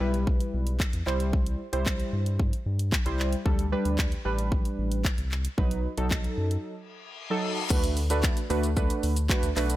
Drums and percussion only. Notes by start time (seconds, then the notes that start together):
0.14 closed hi-hat
0.27 kick
0.40 closed hi-hat
0.67 closed hi-hat
0.80 kick, clap
0.93 closed hi-hat
1.07 clap
1.20 closed hi-hat
1.33 kick
1.46 closed hi-hat
1.73 closed hi-hat
1.86 kick, clap
2.00 closed hi-hat
2.26 closed hi-hat
2.40 kick
2.53 closed hi-hat
2.79 closed hi-hat
2.92 kick, clap
3.06 closed hi-hat
3.19 clap
3.33 closed hi-hat
3.46 kick
3.59 closed hi-hat
3.85 closed hi-hat
3.98 kick, clap
4.12 closed hi-hat
4.38 closed hi-hat
4.52 kick
4.65 closed hi-hat
4.92 closed hi-hat
5.05 kick, clap
5.18 closed hi-hat
5.31 clap
5.45 closed hi-hat
5.58 kick
5.71 closed hi-hat
5.98 closed hi-hat
6.11 kick, clap
6.24 closed hi-hat
6.51 closed hi-hat
7.70 kick, crash, shaker
7.84 closed hi-hat, shaker
7.97 open hi-hat, shaker
8.10 closed hi-hat, shaker
8.23 kick, clap, shaker
8.37 closed hi-hat, shaker
8.50 open hi-hat, shaker
8.63 closed hi-hat, shaker
8.77 kick, shaker
8.90 closed hi-hat, shaker
9.03 open hi-hat, shaker
9.16 closed hi-hat, shaker
9.29 kick, clap, shaker
9.43 closed hi-hat, shaker
9.56 clap, open hi-hat, shaker
9.70 closed hi-hat, shaker